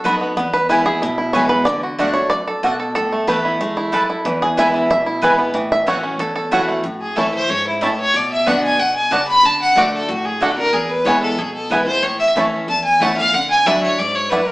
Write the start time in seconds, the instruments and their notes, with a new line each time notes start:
Already playing: steel-string acoustic guitar F#2, five-string banjo A4
0.04 steel-string acoustic guitar F#3 B3 D#4 F#4, mandolin B3 F#4 D#5 B5, five-string banjo F#4
0.21 five-string banjo B3
0.37 steel-string acoustic guitar E2, five-string banjo B3
0.53 five-string banjo B4
0.69 steel-string acoustic guitar E3 G#3 B3 E4, mandolin B3 E4 B4 G#5, five-string banjo E4
0.86 steel-string acoustic guitar B3 E4, five-string banjo G#4
1.02 steel-string acoustic guitar B2, five-string banjo E4
1.18 five-string banjo E4
1.33 steel-string acoustic guitar E3 G#3 B3 E4, mandolin B3 E4 B4 G#5, five-string banjo C#5
1.49 five-string banjo B4
1.65 steel-string acoustic guitar D3, five-string banjo D5
1.83 five-string banjo F#4
1.98 steel-string acoustic guitar D3 A3 D4 F#4, mandolin A3 F#4 D5 F#5, five-string banjo A3
2.13 steel-string acoustic guitar D4 F#4, five-string banjo C#5
2.30 steel-string acoustic guitar F#2, five-string banjo D5
2.48 five-string banjo A4
2.63 steel-string acoustic guitar B2, mandolin A3 F#4 D5 F#5, five-string banjo F#4
2.80 five-string banjo A4
2.95 steel-string acoustic guitar A2, five-string banjo A4
3.12 five-string banjo A3
3.27 steel-string acoustic guitar E3 A3 B3 E4, mandolin A3 E4 B4 A5, five-string banjo B4
3.45 five-string banjo E4
3.61 steel-string acoustic guitar G#3, five-string banjo A3
3.77 five-string banjo E4
3.92 steel-string acoustic guitar F#2, mandolin A3 E4 B4 A5, five-string banjo A4
4.10 five-string banjo E4
4.25 steel-string acoustic guitar E2, five-string banjo E3
4.42 five-string banjo G#4
4.57 steel-string acoustic guitar E3 G#3 B3 E4, mandolin B3 E4 B4 G#5, five-string banjo E5
4.74 five-string banjo E4
4.90 steel-string acoustic guitar B2, five-string banjo E5
5.06 five-string banjo E4
5.22 steel-string acoustic guitar E3 G#3 B3 E4, mandolin B3 E4 B4 G#5, five-string banjo B4
5.37 five-string banjo B3, steel-string acoustic guitar B3 E4
5.54 steel-string acoustic guitar A2, five-string banjo E3
5.72 five-string banjo E5
5.86 steel-string acoustic guitar E3 A3 C#4 F#4, mandolin A3 F#4 C#5 F#5, five-string banjo C#5
6.03 five-string banjo C#4
6.19 steel-string acoustic guitar E2, five-string banjo A4
6.36 five-string banjo A4
6.51 steel-string acoustic guitar E3 A3 C#4 F#4, mandolin A3 F#4 C#5 F#5, five-string banjo E4
6.68 five-string banjo A3
6.84 steel-string acoustic guitar A2
7.01 fiddle G#4
7.16 steel-string acoustic guitar E3 A3 C#4 E4, mandolin A3 E4 C#5 A5, five-string banjo A3 C#4 E4, fiddle A4
7.34 fiddle C5
7.49 steel-string acoustic guitar G#2, fiddle C#5
7.67 fiddle E4
7.81 steel-string acoustic guitar A2, mandolin A3 E4 C#5 A5, five-string banjo A3 C#4 E4, fiddle A4
8.00 fiddle C#5
8.14 steel-string acoustic guitar B2, fiddle D5
8.32 fiddle E5
8.46 steel-string acoustic guitar D3 B3 D4 F#4, mandolin B3 F#4 D5 F#5, five-string banjo B3 D4 F#4, fiddle F#5
8.63 fiddle G#5
8.79 steel-string acoustic guitar B2, fiddle F#5
8.96 fiddle G#5
9.11 steel-string acoustic guitar C#3, mandolin B3 F#4 D5 F#5, five-string banjo B3 D4 F#4, fiddle A5
9.28 fiddle B5
9.43 steel-string acoustic guitar D3, fiddle A5
9.62 fiddle F#5
9.75 steel-string acoustic guitar D3 A3 D4 F#4, mandolin A3 F#4 D5 F#5, five-string banjo A3 D4 F#4, fiddle D5
9.93 fiddle A4
10.09 steel-string acoustic guitar A2, fiddle F#4
10.25 fiddle G#4
10.40 steel-string acoustic guitar D3 A3 D4 F#4, mandolin A3 F#4 D5 F#5, five-string banjo A3 D4 F#4, fiddle A4
10.57 steel-string acoustic guitar D4 F#4, fiddle A#4
10.73 steel-string acoustic guitar E2, fiddle G#4
10.90 fiddle B4
11.05 steel-string acoustic guitar E3 G#3 B3 E4, mandolin B3 E4 B4 G#5, five-string banjo B3 E4, fiddle C#5
11.22 fiddle A4
11.38 steel-string acoustic guitar B2, fiddle G#4
11.54 fiddle A4
11.70 steel-string acoustic guitar E3 G#3 B3 E4, mandolin B3 E4 B4 G#5, five-string banjo B3 E4, fiddle B4
11.86 steel-string acoustic guitar B3 E4, fiddle C5
12.03 steel-string acoustic guitar A2, fiddle C#5
12.19 fiddle E5
12.36 steel-string acoustic guitar E3 A3 C#4 E4, mandolin A3 E4 C#5 A5, five-string banjo A3 C#4 E4
12.68 steel-string acoustic guitar E2, fiddle A5
12.84 fiddle G#5
13.00 steel-string acoustic guitar E3 A3 C#4 E4, mandolin A3 E4 C#5 A5, five-string banjo A3 C#4 E4, fiddle F#5
13.16 steel-string acoustic guitar C#4 E4, fiddle F5
13.33 steel-string acoustic guitar D3, fiddle F#5
13.50 fiddle G#5
13.66 steel-string acoustic guitar F#3 A3 D4 E4, mandolin A3 E4 D5 F#5, five-string banjo A3 D4 E4, fiddle E5
13.82 fiddle C#5
13.98 steel-string acoustic guitar G#2, fiddle D5
14.15 fiddle C#5
14.30 steel-string acoustic guitar F#2, mandolin A3 E4 D5 F#5, five-string banjo A3 D4 E4, fiddle B4
14.47 fiddle A#4